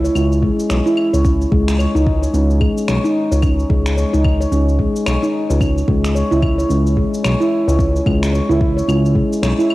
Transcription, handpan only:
0.04 0.15 C#5 medium
0.15 0.41 C#4 medium
0.42 0.58 G#3 medium
0.69 0.79 C#5 medium
0.86 1.12 E4 medium
1.13 1.24 C#5 medium
1.24 1.51 C#4 medium
1.52 1.67 G#3 loud
1.79 1.88 C#5 medium
1.95 2.21 D#4 loud
2.22 2.33 C#5 medium
2.34 2.60 C#4 medium
2.61 2.76 G#3 loud
2.88 2.97 C#5 medium
3.04 3.30 D#4 medium
3.32 3.42 C#5 medium
3.42 3.69 C#4 medium
3.70 3.85 G#3 medium
3.97 4.06 C#5 medium
4.13 4.39 D#4 loud
4.41 4.51 C#5 medium
4.52 4.78 C#4 medium
4.79 4.94 G#3 medium
5.06 5.16 C#5 medium
5.23 5.48 D#4 medium
5.50 5.60 C#5 medium
5.61 5.87 C#4 medium
5.88 6.03 G#3 medium
6.15 6.25 C#5 medium
6.31 6.57 E4 loud
6.58 6.69 C#5 medium
6.69 6.96 C#4 medium
6.97 7.12 G#3 medium
7.24 7.34 C#5 medium
7.40 7.66 E4 loud
7.68 7.78 C#5 medium
7.79 8.05 C#4 medium
8.06 8.22 G#3 medium
8.33 8.43 C#5 medium
8.49 8.75 E4 loud
8.77 8.87 C#5 medium
8.88 9.14 C#4 medium
9.15 9.31 G#3 medium
9.43 9.52 C#5 medium
9.59 9.75 E4 medium

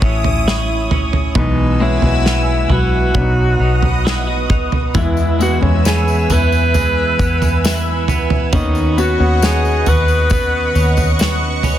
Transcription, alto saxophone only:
0.03 0.87 E4 medium
1.39 1.79 D#4 medium
1.82 2.73 E4 medium
2.72 4.51 F#4 medium
4.96 5.38 E4 medium
5.43 5.59 F#4 medium
5.87 6.34 G#4 medium
6.33 8.10 B4 loud
8.55 8.95 D#4 medium
9.00 9.46 F#4 medium
9.44 9.90 G#4 medium
9.89 11.64 B4 loud

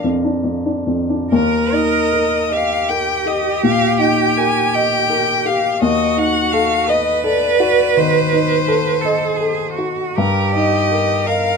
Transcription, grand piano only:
0.00 1.28 A#1 medium
0.00 0.37 F2 soft
0.00 0.17 D4 soft
0.00 1.35 A#4 soft
0.00 1.35 D5 soft
0.00 1.36 F5 medium
0.00 1.36 A#5 medium
0.25 0.58 D4 soft
0.44 0.79 F2 soft
0.66 1.02 D4 soft
0.86 1.23 F2 soft
1.10 1.32 D4 soft
1.32 3.60 D#2 medium
1.72 2.35 D#4 soft
2.13 2.74 A#4 soft
2.50 3.11 D#5 soft
2.90 3.50 A#4 soft
3.26 3.85 G4 soft
3.63 4.22 A#2 soft
3.99 4.58 D#4 soft
4.37 4.96 A#4 soft
4.75 5.32 D#5 medium
5.10 5.67 A#4 soft
5.46 5.82 G4 soft
5.82 7.92 D#2 medium
6.17 6.74 D#4 soft
6.53 7.10 A4 medium
6.89 7.46 D#5 medium
7.24 7.82 A4 soft
7.60 8.18 F#4 medium
7.97 8.54 D#3 medium
8.33 8.90 D#4 medium
8.68 9.25 A4 medium
9.05 9.63 D#5 medium
9.41 10.01 A4 soft
9.78 10.17 F#4 soft
10.18 11.57 G2 medium
10.55 11.13 D#4 soft
10.92 11.49 A#4 soft
11.27 11.57 D#5 soft

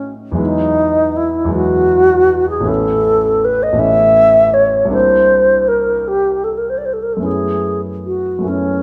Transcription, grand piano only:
0.00 0.31 A2 medium
0.00 0.32 E3 soft
0.00 0.33 G#3 soft
0.00 0.34 C#4 soft
0.00 0.35 D#4 soft
0.32 1.43 E2 medium
0.32 1.45 F#3 soft
0.32 1.47 G#3 soft
0.37 1.49 B3 soft
0.37 1.50 E4 soft
1.45 2.60 E2 medium
1.45 2.61 F#3 soft
1.49 2.62 G#3 soft
1.49 2.62 B3 soft
1.49 2.64 E4 soft
2.61 3.71 A1 medium
2.61 3.73 A3 soft
2.61 3.75 B3 soft
2.66 3.77 C#4 soft
2.66 3.78 E4 soft
3.73 4.86 A1 medium
3.73 4.87 A3 soft
3.73 4.88 B3 soft
3.78 4.89 C#4 soft
3.78 4.90 E4 soft
4.85 7.17 C2 medium
4.85 7.18 A#3 soft
4.89 7.19 C4 soft
4.89 7.20 D4 soft
4.89 7.21 E4 soft
7.17 8.37 F#2 soft
7.17 8.39 A3 soft
7.17 8.41 B3 soft
7.22 8.43 C#4 soft
7.22 8.44 E4 soft
8.39 8.83 F#2 soft
8.39 8.83 A3 soft
8.39 8.83 B3 soft
8.44 8.83 C#4 soft
8.44 8.83 E4 soft

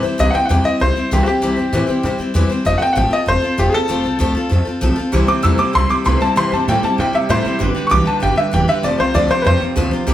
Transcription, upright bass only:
0.04 muted upright bass stroke medium
0.19 0.32 C2 loud
0.50 0.62 E2 medium
0.66 muted upright bass stroke medium
0.81 0.93 C2 loud
1.12 1.24 C2 medium
1.42 1.54 C2 loud
1.57 1.70 G2 medium
1.73 1.85 A2 medium
1.89 muted upright bass stroke medium
2.04 2.16 C3 medium
2.19 muted upright bass stroke medium
2.35 2.47 E2 medium
2.50 muted upright bass stroke medium
2.66 2.78 F1 medium
2.81 muted upright bass stroke medium
2.96 3.09 A1 loud
3.12 muted upright bass stroke medium
3.27 3.40 F1 medium
3.58 3.71 F1 medium
3.74 muted upright bass stroke medium
3.90 4.02 F1 medium
4.04 4.17 C2 loud
4.20 4.33 D2 loud
4.36 muted upright bass stroke medium
4.51 4.64 F2 loud
4.66 muted upright bass stroke medium
4.82 4.94 B1 loud
4.97 muted upright bass stroke medium
5.13 5.25 C2 medium
5.44 5.56 E2 loud
5.60 muted upright bass stroke medium
5.75 5.87 C2 medium
5.91 muted upright bass stroke medium
6.06 6.18 C2 medium
6.37 6.49 C2 medium
6.52 6.65 G2 loud
6.68 6.80 A2 medium
6.83 muted upright bass stroke medium
6.99 7.11 C3 medium
7.14 muted upright bass stroke medium
7.29 7.42 A2 loud
7.45 muted upright bass stroke medium
7.61 7.73 G1 medium
7.76 muted upright bass stroke medium
7.91 8.04 B1 medium
8.07 muted upright bass stroke medium
8.23 8.35 G1 medium
8.53 8.65 E1 loud
8.69 muted upright bass stroke medium
8.84 8.96 F1 loud
8.99 9.12 C2 medium
9.15 9.27 D2 loud
9.30 muted upright bass stroke medium
9.46 9.58 F2 loud
9.62 muted upright bass stroke medium
9.76 9.89 D2 loud
9.92 muted upright bass stroke medium
10.07 10.14 C2 loud

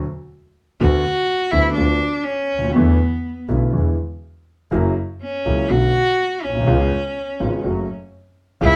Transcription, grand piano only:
0.80 1.01 D2 medium
0.80 1.01 D3 medium
0.80 1.01 A3 medium
0.80 1.01 B3 medium
0.80 1.01 F#4 medium
1.52 1.73 D2 medium
1.52 1.73 D3 medium
1.52 1.74 A3 soft
1.52 1.74 B3 medium
1.52 1.73 F#4 medium
1.77 1.98 D2 medium
1.77 1.98 D3 medium
1.77 1.98 A3 soft
1.77 1.98 B3 soft
1.77 1.98 F4 medium
2.58 2.64 C#2 soft
2.64 2.70 D2 medium
2.70 2.76 D#2 medium
2.76 2.96 E2 medium
2.76 2.96 D3 medium
2.76 2.96 E3 medium
2.76 2.96 A3 medium
2.76 2.96 B3 medium
2.76 2.96 E4 medium
3.48 3.69 B1 medium
3.48 3.69 B2 medium
3.48 3.69 D3 soft
3.48 3.69 A3 soft
3.48 3.70 B3 soft
3.48 3.69 E4 soft
3.72 3.94 E2 medium
3.72 3.94 D3 soft
3.72 3.94 E3 medium
3.72 3.94 G#3 soft
3.72 3.94 B3 soft
3.72 3.94 E4 soft
4.71 4.93 F#2 medium
4.71 4.92 C#3 medium
4.71 4.92 F#3 medium
4.71 4.93 A#3 medium
4.71 4.93 E4 medium
5.45 5.67 C#2 medium
5.45 5.67 C#3 medium
5.45 5.66 F#3 soft
5.45 5.67 A#3 soft
5.45 5.66 E4 medium
5.70 5.91 B1 medium
5.70 5.91 B2 medium
5.70 5.91 D3 soft
5.70 5.91 A3 soft
5.70 5.91 B3 soft
5.70 5.91 F#4 soft
6.49 6.56 A#1 soft
6.55 6.61 B1 medium
6.61 6.68 C2 medium
6.67 6.88 C#2 medium
6.67 6.88 C#3 medium
6.67 6.88 G#3 medium
6.67 6.88 B3 medium
6.67 6.88 F4 medium
7.40 7.61 G#1 medium
7.40 7.61 G#2 medium
7.40 7.61 C#3 medium
7.40 7.61 G#3 soft
7.40 7.61 B3 soft
7.40 7.61 F4 medium
7.64 7.85 F#2 medium
7.64 7.85 C#3 soft
7.64 7.85 F#3 medium
7.64 7.85 A3 soft
7.64 7.85 F#4 medium
8.61 8.76 C#2 medium
8.61 8.76 C#3 medium
8.61 8.76 E3 medium
8.61 8.76 G#3 medium
8.61 8.76 E4 medium

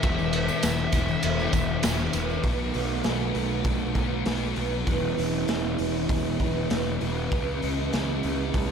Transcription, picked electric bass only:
0.04 0.48 E1 loud
0.64 0.86 E1 medium
0.93 1.15 E1 medium
1.24 1.46 E1 loud
1.53 1.76 E1 medium
1.84 2.06 E1 medium
2.14 2.37 E1 medium
2.44 2.70 B1 medium
2.75 3.01 B1 medium
3.05 3.31 B1 medium
3.35 3.61 B1 medium
3.65 3.91 B1 medium
3.95 4.21 B1 medium
4.26 4.52 B1 medium
4.57 4.83 B1 medium
4.87 5.13 E1 medium
5.18 5.44 E1 medium
5.49 5.75 E1 medium
5.79 6.05 E1 medium
6.10 6.36 E1 medium
6.40 6.66 E1 medium
6.71 6.97 E1 medium
7.01 7.27 E1 medium
7.32 7.58 C#2 medium
7.63 7.89 C#2 medium
7.94 8.19 C#2 medium
8.24 8.50 C#2 medium
8.54 8.71 C#2 medium

